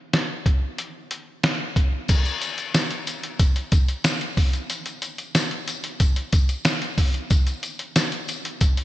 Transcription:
0.13 snare medium
0.13 closed hi-hat medium
0.46 kick medium
0.46 closed hi-hat medium
0.78 closed hi-hat medium
1.11 closed hi-hat medium
1.43 snare loud
1.43 closed hi-hat medium
1.76 kick medium
1.76 closed hi-hat medium
2.08 kick loud
2.08 closed hi-hat medium
2.08 crash medium
2.08 tambourine soft
2.25 closed hi-hat soft
2.25 tambourine soft
2.41 closed hi-hat medium
2.41 tambourine soft
2.58 closed hi-hat soft
2.58 tambourine soft
2.74 snare loud
2.74 closed hi-hat medium
2.74 tambourine medium
2.91 closed hi-hat soft
3.07 closed hi-hat medium
3.07 tambourine soft
3.23 closed hi-hat medium
3.39 kick medium
3.39 closed hi-hat medium
3.39 tambourine medium
3.56 closed hi-hat medium
3.72 kick medium
3.72 closed hi-hat medium
3.72 tambourine soft
3.88 closed hi-hat medium
3.88 tambourine soft
4.04 snare loud
4.04 closed hi-hat medium
4.04 tambourine medium
4.21 closed hi-hat soft
4.37 kick loud
4.37 open hi-hat medium
4.37 tambourine soft
4.53 closed hi-hat medium
4.53 tambourine soft
4.70 closed hi-hat medium
4.70 tambourine medium
4.86 closed hi-hat soft
4.86 tambourine soft
5.02 closed hi-hat medium
5.02 tambourine soft
5.18 closed hi-hat soft
5.18 tambourine soft
5.35 snare loud
5.35 closed hi-hat medium
5.35 tambourine medium
5.51 closed hi-hat soft
5.68 closed hi-hat medium
5.68 tambourine soft
5.84 closed hi-hat medium
6.00 kick medium
6.00 closed hi-hat medium
6.00 tambourine medium
6.16 closed hi-hat medium
6.32 kick medium
6.32 closed hi-hat medium
6.32 tambourine soft
6.49 closed hi-hat medium
6.49 tambourine soft
6.65 snare loud
6.65 closed hi-hat loud
6.65 tambourine medium
6.82 closed hi-hat soft
6.98 kick medium
6.98 open hi-hat medium
6.98 tambourine soft
7.14 closed hi-hat medium
7.30 kick loud
7.30 closed hi-hat medium
7.30 tambourine medium
7.47 closed hi-hat soft
7.47 tambourine soft
7.63 closed hi-hat medium
7.63 tambourine soft
7.79 closed hi-hat soft
7.96 snare loud
7.96 closed hi-hat medium
7.96 tambourine medium
8.12 closed hi-hat soft
8.28 closed hi-hat medium
8.28 tambourine soft
8.45 closed hi-hat medium
8.61 kick medium
8.61 closed hi-hat medium
8.61 tambourine medium
8.77 closed hi-hat medium

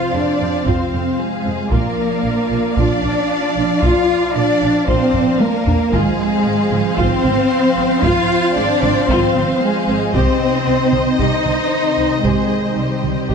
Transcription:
0.00 1.67 C3 medium
0.00 1.67 F3 medium
0.00 1.67 C4 medium
0.00 1.68 C4 medium
0.00 0.13 F4 medium
0.00 0.14 F4 medium
0.00 1.67 F4 medium
0.00 1.68 C5 soft
0.00 0.12 F5 medium
0.00 1.67 F5 soft
0.00 1.67 F5 medium
0.13 0.21 F2 soft
0.13 0.21 G#3 soft
0.13 0.66 D4 medium
0.13 0.66 D5 medium
0.40 0.48 F2 soft
0.40 0.49 C4 soft
0.66 0.74 F2 medium
0.66 1.19 C4 medium
0.66 0.91 F4 medium
0.66 1.19 C5 medium
0.66 taiko medium
0.92 1.00 F2 soft
0.92 1.00 C4 soft
1.19 1.72 G#3 medium
1.19 1.72 G#4 medium
1.45 1.53 F2 soft
1.45 1.53 C4 soft
1.71 1.79 A#1 medium
1.71 5.75 F3 medium
1.71 5.92 F3 medium
1.71 2.75 A#3 medium
1.71 5.75 D4 medium
1.71 5.93 D4 medium
1.71 1.96 F4 medium
1.71 5.89 F4 medium
1.71 2.77 A#4 medium
1.71 5.89 D5 medium
1.71 5.89 F5 medium
1.71 taiko medium
2.24 2.32 A#1 soft
2.24 2.32 A#3 soft
2.51 2.59 A#1 soft
2.51 2.59 D4 soft
2.77 2.85 A#1 medium
2.77 3.82 D4 medium
2.77 3.83 D4 medium
2.77 3.02 F4 medium
2.77 3.80 D5 medium
2.77 taiko medium
3.04 3.12 A#1 soft
3.04 3.12 D4 medium
3.56 3.64 A#1 soft
3.56 3.65 D4 medium
3.82 3.91 A#1 medium
3.82 4.34 F4 medium
3.82 4.35 F4 medium
3.82 4.07 F4 medium
3.82 4.35 F5 medium
3.82 taiko medium
4.34 4.43 A#1 medium
4.34 4.43 A#3 medium
4.34 4.86 D4 medium
4.34 4.88 D4 medium
4.34 4.86 D5 medium
4.61 4.69 A#1 medium
4.61 4.69 D4 medium
4.87 4.96 A#1 medium
4.87 5.40 C4 medium
4.87 5.40 C4 loud
4.87 5.12 F4 medium
4.87 5.39 C5 medium
4.87 taiko medium
5.14 5.22 A#1 medium
5.14 5.23 D4 medium
5.14 taiko low-mid medium
5.40 5.93 A#3 medium
5.40 5.77 A#3 medium
5.40 5.93 A#4 medium
5.40 taiko high medium
5.66 5.74 A#1 medium
5.66 5.74 D4 medium
5.66 taiko low medium
5.92 6.01 G#1 medium
5.92 10.10 F3 medium
5.92 6.98 G#3 medium
5.92 6.96 G#3 medium
5.92 10.10 C4 medium
5.92 10.13 C4 medium
5.92 6.17 F4 medium
5.92 10.10 F4 medium
5.92 6.98 G#4 medium
5.92 10.10 C5 medium
5.92 10.13 C5 medium
5.92 10.09 F5 medium
5.92 taiko medium
6.45 6.53 G#1 medium
6.45 6.53 G#3 medium
6.72 6.80 G#1 medium
6.72 6.80 C4 medium
6.72 taiko mid soft
6.97 7.07 G#1 medium
6.97 8.03 C4 medium
6.97 8.03 C4 loud
6.97 7.22 F4 medium
6.97 8.03 C5 medium
6.97 taiko medium
7.24 7.32 G#1 medium
7.24 7.32 C4 medium
7.24 taiko mid soft
7.77 7.85 G#1 medium
7.77 7.86 C4 medium
8.03 8.12 G#1 medium
8.03 8.55 F4 loud
8.03 8.56 F4 loud
8.03 8.28 F4 medium
8.03 8.55 F5 loud
8.03 taiko medium
8.55 8.64 G#1 medium
8.55 8.65 G#3 medium
8.55 9.09 D4 medium
8.55 9.08 D4 loud
8.55 9.08 D5 medium
8.83 8.91 G#1 medium
8.83 8.91 C4 medium
8.83 taiko mid soft
9.08 9.17 G#1 medium
9.08 9.61 C4 medium
9.08 9.34 F4 medium
9.08 9.61 C5 medium
9.08 taiko medium
9.35 9.43 G#1 medium
9.35 9.44 C4 medium
9.35 taiko mid soft
9.60 10.13 G#3 medium
9.60 10.14 G#3 medium
9.60 10.14 G#4 medium
9.88 9.96 G#1 medium
9.88 9.96 C4 medium
10.13 10.22 C2 medium
10.13 13.35 C3 medium
10.13 13.35 D#3 medium
10.13 11.19 C4 medium
10.13 11.19 C4 loud
10.13 13.35 C4 medium
10.13 13.35 D#4 medium
10.13 10.39 G4 medium
10.13 11.17 C5 medium
10.13 13.35 C5 medium
10.13 13.35 D#5 medium
10.13 taiko medium
10.66 10.74 C2 soft
10.66 10.74 C4 medium
10.93 11.01 C2 soft
10.93 11.01 D#4 soft
10.93 taiko mid soft
11.18 11.27 C2 medium
11.18 12.24 D#4 medium
11.18 11.43 G4 medium
11.18 12.24 D#5 medium
11.18 taiko medium
11.45 11.53 C2 soft
11.45 11.54 D#4 soft
11.45 taiko mid soft
11.98 12.06 C2 soft
11.98 12.06 D#4 soft
12.23 12.32 C2 medium
12.23 12.76 G#3 medium
12.23 12.49 G4 medium
12.23 12.77 G#4 medium
12.23 taiko medium
12.76 12.85 C2 soft
12.76 13.35 G3 medium
12.76 13.35 G3 soft
12.76 12.86 C4 soft
12.76 13.35 G4 soft
13.04 13.12 C2 soft
13.04 13.12 D#4 soft
13.04 taiko mid soft
13.29 13.35 C2 medium
13.29 13.35 G4 medium
13.29 taiko medium

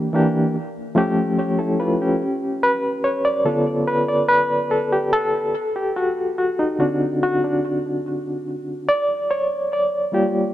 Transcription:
0.00 0.13 E3 loud
0.00 0.14 A#3 loud
0.00 0.15 D4 medium
0.00 0.16 G4 loud
0.13 0.55 E3 medium
0.13 0.55 A#3 medium
0.13 0.55 D4 medium
0.13 0.56 G4 medium
0.95 1.48 F3 medium
0.95 1.48 A3 medium
0.95 1.38 C#4 medium
0.95 1.38 G4 loud
1.39 1.58 G4 medium
1.39 1.58 C#5 medium
1.59 1.79 E4 medium
1.59 1.78 A4 medium
1.80 2.00 F4 medium
1.80 1.99 B4 medium
2.02 2.41 C#4 medium
2.02 2.41 G4 medium
2.63 2.82 B4 loud
3.04 3.26 C#5 medium
3.25 3.34 D5 loud
3.45 4.66 D3 soft
3.45 4.67 B3 medium
3.45 4.67 F4 medium
3.45 3.64 A4 medium
3.87 4.09 B4 medium
4.09 4.30 D5 medium
4.29 4.47 B4 loud
4.71 4.80 A4 medium
4.92 5.13 G4 medium
5.13 5.71 A4 medium
5.76 5.97 G4 medium
5.96 6.37 F#4 medium
6.38 6.59 F#4 medium
6.59 6.80 D#4 medium
6.78 8.00 D3 soft
6.78 8.00 C4 medium
6.78 7.23 D4 medium
6.78 7.22 F#4 medium
7.23 7.43 F#4 medium
7.44 7.82 D4 medium
8.89 9.07 D5 loud
9.31 9.72 C#5 medium
9.73 10.15 D5 medium
10.12 10.54 G3 medium
10.12 10.54 A#3 soft
10.12 10.54 F4 medium
10.12 10.54 G4 medium

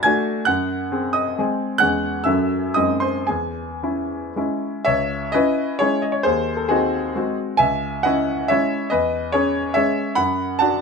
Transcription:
0.03 0.43 A3 medium
0.03 0.43 D4 medium
0.03 0.43 F#4 medium
0.03 0.43 G#5 medium
0.03 0.45 G#6 medium
0.45 0.90 F#2 medium
0.45 1.11 F#5 medium
0.45 1.14 F#6 medium
0.92 1.35 C4 medium
0.92 1.35 G#4 medium
1.13 1.36 D#5 medium
1.13 1.37 D#6 medium
1.39 1.78 G#3 medium
1.39 1.78 C4 medium
1.39 1.78 G#4 medium
1.78 2.25 E2 medium
1.78 2.22 G#3 soft
1.78 2.22 C#4 soft
1.78 2.22 F#5 medium
1.78 2.25 F#6 loud
1.82 2.23 G#4 soft
2.24 2.75 F#2 medium
2.24 2.72 F#3 soft
2.24 2.72 C#4 soft
2.24 2.73 A4 soft
2.24 2.72 E5 medium
2.24 2.75 E6 medium
2.74 3.27 F#2 medium
2.74 3.24 G#3 soft
2.74 3.25 C4 soft
2.74 3.25 D#4 soft
2.74 3.00 D#5 medium
2.74 3.01 D#6 medium
3.00 3.26 C5 medium
3.00 3.27 C6 medium
3.27 3.82 E2 medium
3.27 4.32 G#4 soft
3.27 4.36 G#5 medium
3.83 4.33 C#4 soft
3.83 4.33 E4 soft
4.36 4.83 G#3 soft
4.36 4.83 C#4 soft
4.36 4.83 E4 soft
4.85 5.33 C#2 medium
4.85 5.30 C#5 medium
4.85 5.33 E5 medium
5.32 5.78 C#4 medium
5.32 5.78 E4 medium
5.32 5.78 B4 medium
5.32 5.80 D#5 loud
5.79 6.21 G#3 soft
5.79 6.21 C#4 soft
5.79 6.21 E4 soft
5.79 6.01 G#4 medium
5.79 6.02 C#5 medium
6.02 6.14 D#5 medium
6.12 6.24 C#5 medium
6.23 6.69 D#2 medium
6.23 6.56 G#4 medium
6.23 6.58 C5 medium
6.57 6.69 A4 medium
6.69 7.12 C4 medium
6.69 7.34 D#4 medium
6.69 7.12 F#4 medium
6.69 7.37 G#4 medium
7.16 7.55 G#3 soft
7.16 7.56 C4 soft
7.16 7.56 F#4 soft
7.57 8.04 C#2 medium
7.57 8.02 E5 medium
7.57 8.04 G#5 medium
8.03 8.46 C#4 medium
8.03 8.46 E4 medium
8.03 8.46 D#5 medium
8.03 8.49 F#5 medium
8.48 8.87 G#3 soft
8.48 8.88 C#4 soft
8.48 8.88 E4 medium
8.48 8.88 C#5 medium
8.48 8.90 E5 medium
8.90 9.33 E2 medium
8.90 9.30 B4 medium
8.90 9.33 D#5 medium
9.32 9.73 C#4 medium
9.32 9.73 G#4 medium
9.32 9.74 C#5 medium
9.74 10.13 G#3 soft
9.74 10.14 C#4 soft
9.74 10.14 G#4 medium
9.74 10.14 C#5 medium
9.74 10.16 E5 medium
10.15 10.59 F#2 medium
10.15 10.57 F#5 medium
10.15 10.60 B5 loud
10.59 10.81 D4 medium
10.59 10.81 F#4 medium
10.59 10.81 F#5 medium
10.59 10.81 A5 medium

